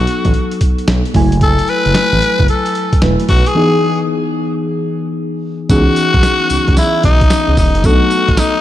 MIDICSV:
0, 0, Header, 1, 5, 480
1, 0, Start_track
1, 0, Tempo, 535714
1, 1264, Time_signature, 4, 2, 24, 8
1, 7714, End_track
2, 0, Start_track
2, 0, Title_t, "Tenor saxophone"
2, 0, Program_c, 0, 66
2, 0, Note_on_c, 0, 66, 97
2, 547, Note_off_c, 0, 66, 0
2, 1277, Note_on_c, 0, 69, 104
2, 1516, Note_on_c, 0, 71, 122
2, 1529, Note_off_c, 0, 69, 0
2, 2230, Note_off_c, 0, 71, 0
2, 2237, Note_on_c, 0, 69, 92
2, 2678, Note_off_c, 0, 69, 0
2, 2951, Note_on_c, 0, 66, 98
2, 3111, Note_on_c, 0, 68, 103
2, 3125, Note_off_c, 0, 66, 0
2, 3587, Note_off_c, 0, 68, 0
2, 5113, Note_on_c, 0, 66, 125
2, 6033, Note_off_c, 0, 66, 0
2, 6073, Note_on_c, 0, 64, 107
2, 6292, Note_off_c, 0, 64, 0
2, 6315, Note_on_c, 0, 63, 100
2, 6756, Note_off_c, 0, 63, 0
2, 6796, Note_on_c, 0, 63, 94
2, 7040, Note_on_c, 0, 66, 116
2, 7054, Note_off_c, 0, 63, 0
2, 7518, Note_on_c, 0, 63, 101
2, 7532, Note_off_c, 0, 66, 0
2, 7714, Note_off_c, 0, 63, 0
2, 7714, End_track
3, 0, Start_track
3, 0, Title_t, "FM electric piano"
3, 0, Program_c, 1, 5
3, 0, Control_c, 1, 64, 127
3, 0, Note_on_c, 1, 54, 67
3, 0, Note_on_c, 1, 59, 57
3, 0, Note_on_c, 1, 63, 60
3, 0, Note_on_c, 1, 69, 76
3, 989, Note_off_c, 1, 54, 0
3, 993, Note_off_c, 1, 59, 0
3, 997, Note_off_c, 1, 63, 0
3, 1000, Note_off_c, 1, 69, 0
3, 1020, Note_on_c, 1, 54, 70
3, 1027, Note_on_c, 1, 57, 71
3, 1034, Note_on_c, 1, 64, 66
3, 1035, Control_c, 1, 64, 0
3, 1042, Note_on_c, 1, 80, 78
3, 1176, Control_c, 1, 64, 127
3, 2669, Note_off_c, 1, 54, 0
3, 2672, Note_off_c, 1, 57, 0
3, 2676, Note_off_c, 1, 64, 0
3, 2679, Note_off_c, 1, 80, 0
3, 2704, Note_on_c, 1, 54, 52
3, 2707, Note_on_c, 1, 57, 51
3, 2711, Note_on_c, 1, 64, 46
3, 2715, Note_on_c, 1, 71, 61
3, 3179, Note_on_c, 1, 52, 71
3, 3184, Note_off_c, 1, 54, 0
3, 3186, Note_off_c, 1, 57, 0
3, 3187, Note_on_c, 1, 59, 67
3, 3188, Note_off_c, 1, 64, 0
3, 3190, Note_off_c, 1, 71, 0
3, 3194, Note_on_c, 1, 63, 64
3, 3195, Control_c, 1, 64, 0
3, 3201, Note_on_c, 1, 68, 74
3, 3337, Control_c, 1, 64, 127
3, 5066, Note_off_c, 1, 52, 0
3, 5070, Note_off_c, 1, 59, 0
3, 5074, Note_off_c, 1, 63, 0
3, 5077, Note_off_c, 1, 68, 0
3, 5100, Note_on_c, 1, 52, 65
3, 5106, Note_on_c, 1, 59, 61
3, 5111, Note_on_c, 1, 61, 65
3, 5115, Control_c, 1, 64, 0
3, 5116, Note_on_c, 1, 63, 64
3, 5122, Note_on_c, 1, 68, 77
3, 5287, Control_c, 1, 64, 127
3, 6986, Note_off_c, 1, 52, 0
3, 6990, Note_off_c, 1, 59, 0
3, 6992, Note_off_c, 1, 61, 0
3, 6994, Note_off_c, 1, 63, 0
3, 6997, Note_off_c, 1, 68, 0
3, 7020, Note_on_c, 1, 54, 66
3, 7024, Note_on_c, 1, 57, 61
3, 7030, Note_on_c, 1, 59, 65
3, 7035, Note_on_c, 1, 62, 54
3, 7037, Control_c, 1, 64, 0
3, 7041, Note_on_c, 1, 69, 82
3, 7093, Note_on_c, 1, 63, 60
3, 7106, Note_off_c, 1, 62, 0
3, 7202, Control_c, 1, 64, 127
3, 7714, Note_off_c, 1, 54, 0
3, 7714, Note_off_c, 1, 57, 0
3, 7714, Note_off_c, 1, 59, 0
3, 7714, Note_off_c, 1, 63, 0
3, 7714, Note_off_c, 1, 69, 0
3, 7714, End_track
4, 0, Start_track
4, 0, Title_t, "Analog synth bass"
4, 0, Program_c, 2, 38
4, 225, Note_on_c, 2, 33, 96
4, 290, Note_off_c, 2, 33, 0
4, 787, Note_on_c, 2, 35, 99
4, 915, Note_off_c, 2, 35, 0
4, 1028, Note_on_c, 2, 30, 97
4, 1415, Note_off_c, 2, 30, 0
4, 1665, Note_on_c, 2, 30, 84
4, 1730, Note_off_c, 2, 30, 0
4, 1905, Note_on_c, 2, 33, 91
4, 1970, Note_off_c, 2, 33, 0
4, 2145, Note_on_c, 2, 30, 88
4, 2210, Note_off_c, 2, 30, 0
4, 2708, Note_on_c, 2, 28, 98
4, 2835, Note_off_c, 2, 28, 0
4, 2947, Note_on_c, 2, 35, 96
4, 3075, Note_off_c, 2, 35, 0
4, 5104, Note_on_c, 2, 37, 116
4, 5233, Note_off_c, 2, 37, 0
4, 5504, Note_on_c, 2, 35, 93
4, 5570, Note_off_c, 2, 35, 0
4, 5827, Note_on_c, 2, 37, 53
4, 5890, Note_off_c, 2, 37, 0
4, 5985, Note_on_c, 2, 37, 88
4, 6050, Note_off_c, 2, 37, 0
4, 6308, Note_on_c, 2, 35, 97
4, 6501, Note_off_c, 2, 35, 0
4, 6705, Note_on_c, 2, 37, 85
4, 6770, Note_off_c, 2, 37, 0
4, 6787, Note_on_c, 2, 28, 88
4, 6914, Note_off_c, 2, 28, 0
4, 6943, Note_on_c, 2, 30, 89
4, 7009, Note_off_c, 2, 30, 0
4, 7025, Note_on_c, 2, 35, 107
4, 7153, Note_off_c, 2, 35, 0
4, 7425, Note_on_c, 2, 33, 93
4, 7490, Note_off_c, 2, 33, 0
4, 7714, End_track
5, 0, Start_track
5, 0, Title_t, "Drums"
5, 65, Note_on_c, 9, 42, 75
5, 155, Note_off_c, 9, 42, 0
5, 221, Note_on_c, 9, 42, 44
5, 224, Note_on_c, 9, 36, 87
5, 303, Note_off_c, 9, 42, 0
5, 303, Note_on_c, 9, 42, 63
5, 314, Note_off_c, 9, 36, 0
5, 392, Note_off_c, 9, 42, 0
5, 461, Note_on_c, 9, 42, 58
5, 545, Note_off_c, 9, 42, 0
5, 545, Note_on_c, 9, 42, 75
5, 547, Note_on_c, 9, 36, 82
5, 634, Note_off_c, 9, 42, 0
5, 637, Note_off_c, 9, 36, 0
5, 703, Note_on_c, 9, 42, 54
5, 785, Note_off_c, 9, 42, 0
5, 785, Note_on_c, 9, 42, 84
5, 786, Note_on_c, 9, 38, 112
5, 874, Note_off_c, 9, 42, 0
5, 876, Note_off_c, 9, 38, 0
5, 945, Note_on_c, 9, 42, 64
5, 1024, Note_on_c, 9, 46, 78
5, 1027, Note_on_c, 9, 36, 104
5, 1035, Note_off_c, 9, 42, 0
5, 1114, Note_off_c, 9, 46, 0
5, 1116, Note_off_c, 9, 36, 0
5, 1184, Note_on_c, 9, 42, 60
5, 1263, Note_off_c, 9, 42, 0
5, 1263, Note_on_c, 9, 36, 101
5, 1263, Note_on_c, 9, 42, 76
5, 1353, Note_off_c, 9, 36, 0
5, 1353, Note_off_c, 9, 42, 0
5, 1423, Note_on_c, 9, 42, 54
5, 1503, Note_off_c, 9, 42, 0
5, 1503, Note_on_c, 9, 42, 68
5, 1592, Note_off_c, 9, 42, 0
5, 1664, Note_on_c, 9, 42, 40
5, 1744, Note_off_c, 9, 42, 0
5, 1744, Note_on_c, 9, 38, 114
5, 1744, Note_on_c, 9, 42, 70
5, 1833, Note_off_c, 9, 38, 0
5, 1833, Note_off_c, 9, 42, 0
5, 1903, Note_on_c, 9, 42, 48
5, 1987, Note_off_c, 9, 42, 0
5, 1987, Note_on_c, 9, 42, 77
5, 2076, Note_off_c, 9, 42, 0
5, 2143, Note_on_c, 9, 42, 43
5, 2144, Note_on_c, 9, 36, 84
5, 2224, Note_off_c, 9, 42, 0
5, 2224, Note_on_c, 9, 42, 70
5, 2234, Note_off_c, 9, 36, 0
5, 2313, Note_off_c, 9, 42, 0
5, 2381, Note_on_c, 9, 42, 55
5, 2465, Note_off_c, 9, 42, 0
5, 2465, Note_on_c, 9, 42, 78
5, 2555, Note_off_c, 9, 42, 0
5, 2622, Note_on_c, 9, 36, 99
5, 2623, Note_on_c, 9, 42, 53
5, 2703, Note_off_c, 9, 42, 0
5, 2703, Note_on_c, 9, 42, 84
5, 2705, Note_on_c, 9, 38, 108
5, 2712, Note_off_c, 9, 36, 0
5, 2793, Note_off_c, 9, 42, 0
5, 2795, Note_off_c, 9, 38, 0
5, 2864, Note_on_c, 9, 42, 64
5, 2944, Note_on_c, 9, 46, 78
5, 2946, Note_on_c, 9, 36, 100
5, 2953, Note_off_c, 9, 42, 0
5, 3033, Note_off_c, 9, 46, 0
5, 3035, Note_off_c, 9, 36, 0
5, 3104, Note_on_c, 9, 42, 59
5, 3193, Note_off_c, 9, 42, 0
5, 5103, Note_on_c, 9, 36, 118
5, 5103, Note_on_c, 9, 42, 81
5, 5103, Note_on_c, 9, 54, 73
5, 5193, Note_off_c, 9, 36, 0
5, 5193, Note_off_c, 9, 42, 0
5, 5193, Note_off_c, 9, 54, 0
5, 5342, Note_on_c, 9, 42, 80
5, 5346, Note_on_c, 9, 54, 66
5, 5432, Note_off_c, 9, 42, 0
5, 5435, Note_off_c, 9, 54, 0
5, 5502, Note_on_c, 9, 42, 46
5, 5503, Note_on_c, 9, 36, 101
5, 5582, Note_on_c, 9, 38, 111
5, 5583, Note_off_c, 9, 42, 0
5, 5583, Note_on_c, 9, 42, 74
5, 5585, Note_on_c, 9, 54, 90
5, 5593, Note_off_c, 9, 36, 0
5, 5672, Note_off_c, 9, 38, 0
5, 5672, Note_off_c, 9, 42, 0
5, 5674, Note_off_c, 9, 54, 0
5, 5822, Note_on_c, 9, 54, 79
5, 5825, Note_on_c, 9, 42, 80
5, 5911, Note_off_c, 9, 54, 0
5, 5914, Note_off_c, 9, 42, 0
5, 5982, Note_on_c, 9, 42, 43
5, 5984, Note_on_c, 9, 36, 89
5, 6063, Note_off_c, 9, 42, 0
5, 6063, Note_on_c, 9, 42, 71
5, 6063, Note_on_c, 9, 54, 78
5, 6064, Note_on_c, 9, 38, 72
5, 6073, Note_off_c, 9, 36, 0
5, 6153, Note_off_c, 9, 42, 0
5, 6153, Note_off_c, 9, 54, 0
5, 6154, Note_off_c, 9, 38, 0
5, 6302, Note_on_c, 9, 42, 80
5, 6306, Note_on_c, 9, 36, 90
5, 6392, Note_off_c, 9, 42, 0
5, 6395, Note_off_c, 9, 36, 0
5, 6461, Note_on_c, 9, 42, 52
5, 6462, Note_on_c, 9, 36, 103
5, 6543, Note_off_c, 9, 42, 0
5, 6543, Note_on_c, 9, 42, 85
5, 6543, Note_on_c, 9, 54, 97
5, 6544, Note_on_c, 9, 38, 114
5, 6551, Note_off_c, 9, 36, 0
5, 6633, Note_off_c, 9, 42, 0
5, 6633, Note_off_c, 9, 54, 0
5, 6634, Note_off_c, 9, 38, 0
5, 6783, Note_on_c, 9, 46, 79
5, 6785, Note_on_c, 9, 36, 102
5, 6786, Note_on_c, 9, 54, 72
5, 6873, Note_off_c, 9, 46, 0
5, 6875, Note_off_c, 9, 36, 0
5, 6875, Note_off_c, 9, 54, 0
5, 6944, Note_on_c, 9, 42, 63
5, 7023, Note_on_c, 9, 36, 114
5, 7024, Note_off_c, 9, 42, 0
5, 7024, Note_on_c, 9, 42, 86
5, 7024, Note_on_c, 9, 54, 74
5, 7113, Note_off_c, 9, 36, 0
5, 7114, Note_off_c, 9, 42, 0
5, 7114, Note_off_c, 9, 54, 0
5, 7262, Note_on_c, 9, 42, 73
5, 7266, Note_on_c, 9, 54, 68
5, 7352, Note_off_c, 9, 42, 0
5, 7356, Note_off_c, 9, 54, 0
5, 7423, Note_on_c, 9, 36, 99
5, 7423, Note_on_c, 9, 42, 46
5, 7502, Note_on_c, 9, 38, 110
5, 7503, Note_off_c, 9, 42, 0
5, 7503, Note_on_c, 9, 42, 69
5, 7505, Note_on_c, 9, 54, 101
5, 7513, Note_off_c, 9, 36, 0
5, 7592, Note_off_c, 9, 38, 0
5, 7592, Note_off_c, 9, 42, 0
5, 7594, Note_off_c, 9, 54, 0
5, 7714, End_track
0, 0, End_of_file